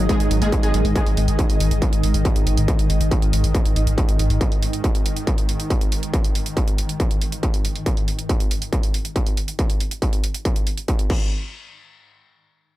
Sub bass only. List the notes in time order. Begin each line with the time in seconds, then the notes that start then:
0.20 G#1
0.31 G#1
0.42 G#1
0.63 G#1
0.74 G#1
0.85 G#1
1.06 G#1
1.17 G#1
1.28 G#1
1.50 G#1
1.60 G#1
1.71 G#1
1.93 G#1
2.04 G#1
2.14 G#1
2.36 G#1
2.47 G#1
2.58 G#1
2.79 G#1
2.90 G#1
3.01 G#1
3.22 G#1
3.33 G#1
3.44 G#1
3.65 G#1
3.76 G#1
3.87 G#1
4.09 G#1
4.19 G#1
4.30 G#1